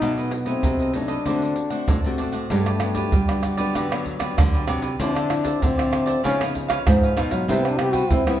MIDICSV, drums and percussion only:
0, 0, Header, 1, 4, 480
1, 0, Start_track
1, 0, Key_signature, 1, "major"
1, 0, Tempo, 623053
1, 14, Time_signature, 4, 2, 24, 8
1, 6471, End_track
2, 0, Start_track
2, 0, Title_t, "Pandeiro"
2, 14, Note_on_c, 9, 54, 76
2, 91, Note_off_c, 9, 54, 0
2, 136, Note_on_c, 9, 54, 31
2, 213, Note_off_c, 9, 54, 0
2, 241, Note_on_c, 9, 54, 71
2, 318, Note_off_c, 9, 54, 0
2, 354, Note_on_c, 9, 54, 61
2, 431, Note_off_c, 9, 54, 0
2, 486, Note_on_c, 9, 54, 78
2, 563, Note_off_c, 9, 54, 0
2, 610, Note_on_c, 9, 54, 32
2, 688, Note_off_c, 9, 54, 0
2, 720, Note_on_c, 9, 54, 61
2, 797, Note_off_c, 9, 54, 0
2, 834, Note_on_c, 9, 54, 54
2, 911, Note_off_c, 9, 54, 0
2, 968, Note_on_c, 9, 54, 74
2, 1045, Note_off_c, 9, 54, 0
2, 1093, Note_on_c, 9, 54, 36
2, 1170, Note_off_c, 9, 54, 0
2, 1200, Note_on_c, 9, 54, 63
2, 1277, Note_off_c, 9, 54, 0
2, 1313, Note_on_c, 9, 54, 54
2, 1390, Note_off_c, 9, 54, 0
2, 1447, Note_on_c, 9, 54, 82
2, 1524, Note_off_c, 9, 54, 0
2, 1573, Note_on_c, 9, 54, 32
2, 1650, Note_off_c, 9, 54, 0
2, 1680, Note_on_c, 9, 54, 60
2, 1757, Note_off_c, 9, 54, 0
2, 1791, Note_on_c, 9, 54, 52
2, 1868, Note_off_c, 9, 54, 0
2, 1927, Note_on_c, 9, 54, 85
2, 2004, Note_off_c, 9, 54, 0
2, 2051, Note_on_c, 9, 54, 33
2, 2128, Note_off_c, 9, 54, 0
2, 2156, Note_on_c, 9, 54, 58
2, 2233, Note_off_c, 9, 54, 0
2, 2270, Note_on_c, 9, 54, 66
2, 2347, Note_off_c, 9, 54, 0
2, 2405, Note_on_c, 9, 54, 68
2, 2482, Note_off_c, 9, 54, 0
2, 2534, Note_on_c, 9, 54, 29
2, 2611, Note_off_c, 9, 54, 0
2, 2641, Note_on_c, 9, 54, 55
2, 2718, Note_off_c, 9, 54, 0
2, 2756, Note_on_c, 9, 54, 69
2, 2833, Note_off_c, 9, 54, 0
2, 2892, Note_on_c, 9, 54, 71
2, 2969, Note_off_c, 9, 54, 0
2, 3020, Note_on_c, 9, 54, 36
2, 3097, Note_off_c, 9, 54, 0
2, 3124, Note_on_c, 9, 54, 49
2, 3201, Note_off_c, 9, 54, 0
2, 3236, Note_on_c, 9, 54, 61
2, 3313, Note_off_c, 9, 54, 0
2, 3375, Note_on_c, 9, 54, 90
2, 3452, Note_off_c, 9, 54, 0
2, 3497, Note_on_c, 9, 54, 30
2, 3574, Note_off_c, 9, 54, 0
2, 3602, Note_on_c, 9, 54, 56
2, 3679, Note_off_c, 9, 54, 0
2, 3716, Note_on_c, 9, 54, 62
2, 3793, Note_off_c, 9, 54, 0
2, 3849, Note_on_c, 9, 54, 84
2, 3926, Note_off_c, 9, 54, 0
2, 3978, Note_on_c, 9, 54, 31
2, 4055, Note_off_c, 9, 54, 0
2, 4084, Note_on_c, 9, 54, 62
2, 4161, Note_off_c, 9, 54, 0
2, 4196, Note_on_c, 9, 54, 70
2, 4273, Note_off_c, 9, 54, 0
2, 4332, Note_on_c, 9, 54, 81
2, 4409, Note_off_c, 9, 54, 0
2, 4462, Note_on_c, 9, 54, 33
2, 4539, Note_off_c, 9, 54, 0
2, 4566, Note_on_c, 9, 54, 57
2, 4643, Note_off_c, 9, 54, 0
2, 4677, Note_on_c, 9, 54, 62
2, 4754, Note_off_c, 9, 54, 0
2, 4815, Note_on_c, 9, 54, 80
2, 4892, Note_off_c, 9, 54, 0
2, 4938, Note_on_c, 9, 54, 38
2, 5016, Note_off_c, 9, 54, 0
2, 5047, Note_on_c, 9, 54, 51
2, 5124, Note_off_c, 9, 54, 0
2, 5160, Note_on_c, 9, 54, 67
2, 5237, Note_off_c, 9, 54, 0
2, 5290, Note_on_c, 9, 54, 82
2, 5367, Note_off_c, 9, 54, 0
2, 5419, Note_on_c, 9, 54, 35
2, 5496, Note_off_c, 9, 54, 0
2, 5526, Note_on_c, 9, 54, 59
2, 5603, Note_off_c, 9, 54, 0
2, 5633, Note_on_c, 9, 54, 67
2, 5710, Note_off_c, 9, 54, 0
2, 5771, Note_on_c, 9, 54, 84
2, 5848, Note_off_c, 9, 54, 0
2, 5894, Note_on_c, 9, 54, 33
2, 5971, Note_off_c, 9, 54, 0
2, 6000, Note_on_c, 9, 54, 59
2, 6077, Note_off_c, 9, 54, 0
2, 6110, Note_on_c, 9, 54, 67
2, 6187, Note_off_c, 9, 54, 0
2, 6244, Note_on_c, 9, 54, 82
2, 6321, Note_off_c, 9, 54, 0
2, 6372, Note_on_c, 9, 54, 34
2, 6449, Note_off_c, 9, 54, 0
2, 6471, End_track
3, 0, Start_track
3, 0, Title_t, "Tamborim"
3, 2051, Note_on_c, 9, 60, 72
3, 2128, Note_off_c, 9, 60, 0
3, 2156, Note_on_c, 9, 60, 85
3, 2233, Note_off_c, 9, 60, 0
3, 2534, Note_on_c, 9, 60, 77
3, 2611, Note_off_c, 9, 60, 0
3, 2641, Note_on_c, 9, 60, 73
3, 2718, Note_off_c, 9, 60, 0
3, 2892, Note_on_c, 9, 60, 66
3, 2969, Note_off_c, 9, 60, 0
3, 3020, Note_on_c, 9, 60, 88
3, 3097, Note_off_c, 9, 60, 0
3, 3236, Note_on_c, 9, 60, 78
3, 3313, Note_off_c, 9, 60, 0
3, 3375, Note_on_c, 9, 60, 87
3, 3452, Note_off_c, 9, 60, 0
3, 3602, Note_on_c, 9, 60, 78
3, 3679, Note_off_c, 9, 60, 0
3, 3978, Note_on_c, 9, 60, 71
3, 4055, Note_off_c, 9, 60, 0
3, 4084, Note_on_c, 9, 60, 83
3, 4161, Note_off_c, 9, 60, 0
3, 4462, Note_on_c, 9, 60, 78
3, 4539, Note_off_c, 9, 60, 0
3, 4566, Note_on_c, 9, 60, 81
3, 4643, Note_off_c, 9, 60, 0
3, 4815, Note_on_c, 9, 60, 64
3, 4892, Note_off_c, 9, 60, 0
3, 4938, Note_on_c, 9, 60, 84
3, 5016, Note_off_c, 9, 60, 0
3, 5160, Note_on_c, 9, 60, 86
3, 5237, Note_off_c, 9, 60, 0
3, 5290, Note_on_c, 9, 60, 89
3, 5367, Note_off_c, 9, 60, 0
3, 5526, Note_on_c, 9, 60, 75
3, 5603, Note_off_c, 9, 60, 0
3, 5894, Note_on_c, 9, 60, 68
3, 5971, Note_off_c, 9, 60, 0
3, 6000, Note_on_c, 9, 60, 84
3, 6077, Note_off_c, 9, 60, 0
3, 6372, Note_on_c, 9, 60, 78
3, 6449, Note_off_c, 9, 60, 0
3, 6471, End_track
4, 0, Start_track
4, 0, Title_t, "Drums"
4, 14, Note_on_c, 9, 82, 85
4, 14, Note_on_c, 9, 87, 55
4, 91, Note_off_c, 9, 82, 0
4, 91, Note_off_c, 9, 87, 0
4, 136, Note_on_c, 9, 82, 28
4, 213, Note_off_c, 9, 82, 0
4, 354, Note_on_c, 9, 82, 77
4, 431, Note_off_c, 9, 82, 0
4, 486, Note_on_c, 9, 82, 69
4, 486, Note_on_c, 9, 87, 92
4, 563, Note_off_c, 9, 82, 0
4, 563, Note_off_c, 9, 87, 0
4, 610, Note_on_c, 9, 82, 31
4, 688, Note_off_c, 9, 82, 0
4, 834, Note_on_c, 9, 82, 73
4, 911, Note_off_c, 9, 82, 0
4, 968, Note_on_c, 9, 82, 69
4, 968, Note_on_c, 9, 87, 52
4, 1045, Note_off_c, 9, 82, 0
4, 1045, Note_off_c, 9, 87, 0
4, 1093, Note_on_c, 9, 82, 32
4, 1170, Note_off_c, 9, 82, 0
4, 1313, Note_on_c, 9, 82, 71
4, 1390, Note_off_c, 9, 82, 0
4, 1447, Note_on_c, 9, 82, 78
4, 1447, Note_on_c, 9, 87, 101
4, 1524, Note_off_c, 9, 82, 0
4, 1524, Note_off_c, 9, 87, 0
4, 1573, Note_on_c, 9, 82, 29
4, 1650, Note_off_c, 9, 82, 0
4, 1791, Note_on_c, 9, 82, 72
4, 1868, Note_off_c, 9, 82, 0
4, 1927, Note_on_c, 9, 82, 84
4, 1927, Note_on_c, 9, 87, 56
4, 2004, Note_off_c, 9, 82, 0
4, 2004, Note_off_c, 9, 87, 0
4, 2051, Note_on_c, 9, 82, 31
4, 2128, Note_off_c, 9, 82, 0
4, 2156, Note_on_c, 9, 82, 72
4, 2233, Note_off_c, 9, 82, 0
4, 2270, Note_on_c, 9, 82, 75
4, 2270, Note_on_c, 9, 87, 34
4, 2347, Note_off_c, 9, 82, 0
4, 2347, Note_off_c, 9, 87, 0
4, 2405, Note_on_c, 9, 82, 80
4, 2405, Note_on_c, 9, 87, 95
4, 2482, Note_off_c, 9, 82, 0
4, 2482, Note_off_c, 9, 87, 0
4, 2534, Note_on_c, 9, 82, 33
4, 2611, Note_off_c, 9, 82, 0
4, 2756, Note_on_c, 9, 82, 78
4, 2833, Note_off_c, 9, 82, 0
4, 2892, Note_on_c, 9, 82, 80
4, 2892, Note_on_c, 9, 87, 47
4, 2969, Note_off_c, 9, 82, 0
4, 2969, Note_off_c, 9, 87, 0
4, 3020, Note_on_c, 9, 82, 39
4, 3097, Note_off_c, 9, 82, 0
4, 3124, Note_on_c, 9, 82, 60
4, 3124, Note_on_c, 9, 87, 35
4, 3201, Note_off_c, 9, 82, 0
4, 3201, Note_off_c, 9, 87, 0
4, 3236, Note_on_c, 9, 82, 78
4, 3236, Note_on_c, 9, 87, 33
4, 3313, Note_off_c, 9, 82, 0
4, 3313, Note_off_c, 9, 87, 0
4, 3375, Note_on_c, 9, 82, 85
4, 3375, Note_on_c, 9, 87, 110
4, 3452, Note_off_c, 9, 82, 0
4, 3452, Note_off_c, 9, 87, 0
4, 3497, Note_on_c, 9, 82, 34
4, 3574, Note_off_c, 9, 82, 0
4, 3602, Note_on_c, 9, 82, 64
4, 3679, Note_off_c, 9, 82, 0
4, 3716, Note_on_c, 9, 82, 78
4, 3716, Note_on_c, 9, 87, 31
4, 3793, Note_off_c, 9, 82, 0
4, 3793, Note_off_c, 9, 87, 0
4, 3849, Note_on_c, 9, 82, 85
4, 3849, Note_on_c, 9, 87, 60
4, 3926, Note_off_c, 9, 82, 0
4, 3926, Note_off_c, 9, 87, 0
4, 3978, Note_on_c, 9, 82, 32
4, 4055, Note_off_c, 9, 82, 0
4, 4084, Note_on_c, 9, 82, 66
4, 4161, Note_off_c, 9, 82, 0
4, 4196, Note_on_c, 9, 82, 84
4, 4196, Note_on_c, 9, 87, 32
4, 4273, Note_off_c, 9, 82, 0
4, 4273, Note_off_c, 9, 87, 0
4, 4332, Note_on_c, 9, 82, 81
4, 4332, Note_on_c, 9, 87, 88
4, 4409, Note_off_c, 9, 82, 0
4, 4409, Note_off_c, 9, 87, 0
4, 4462, Note_on_c, 9, 82, 34
4, 4539, Note_off_c, 9, 82, 0
4, 4677, Note_on_c, 9, 82, 84
4, 4754, Note_off_c, 9, 82, 0
4, 4815, Note_on_c, 9, 82, 75
4, 4815, Note_on_c, 9, 87, 51
4, 4892, Note_off_c, 9, 82, 0
4, 4892, Note_off_c, 9, 87, 0
4, 4938, Note_on_c, 9, 82, 38
4, 5016, Note_off_c, 9, 82, 0
4, 5047, Note_on_c, 9, 82, 66
4, 5047, Note_on_c, 9, 87, 32
4, 5124, Note_off_c, 9, 82, 0
4, 5124, Note_off_c, 9, 87, 0
4, 5160, Note_on_c, 9, 82, 77
4, 5160, Note_on_c, 9, 87, 36
4, 5237, Note_off_c, 9, 82, 0
4, 5237, Note_off_c, 9, 87, 0
4, 5290, Note_on_c, 9, 82, 81
4, 5290, Note_on_c, 9, 87, 103
4, 5367, Note_off_c, 9, 82, 0
4, 5367, Note_off_c, 9, 87, 0
4, 5419, Note_on_c, 9, 82, 33
4, 5496, Note_off_c, 9, 82, 0
4, 5526, Note_on_c, 9, 87, 30
4, 5603, Note_off_c, 9, 87, 0
4, 5633, Note_on_c, 9, 82, 74
4, 5633, Note_on_c, 9, 87, 34
4, 5710, Note_off_c, 9, 82, 0
4, 5710, Note_off_c, 9, 87, 0
4, 5771, Note_on_c, 9, 82, 82
4, 5771, Note_on_c, 9, 87, 63
4, 5848, Note_off_c, 9, 82, 0
4, 5848, Note_off_c, 9, 87, 0
4, 5894, Note_on_c, 9, 82, 32
4, 5971, Note_off_c, 9, 82, 0
4, 6110, Note_on_c, 9, 82, 87
4, 6110, Note_on_c, 9, 87, 33
4, 6187, Note_off_c, 9, 82, 0
4, 6187, Note_off_c, 9, 87, 0
4, 6244, Note_on_c, 9, 82, 75
4, 6244, Note_on_c, 9, 87, 90
4, 6321, Note_off_c, 9, 82, 0
4, 6321, Note_off_c, 9, 87, 0
4, 6372, Note_on_c, 9, 82, 32
4, 6449, Note_off_c, 9, 82, 0
4, 6471, End_track
0, 0, End_of_file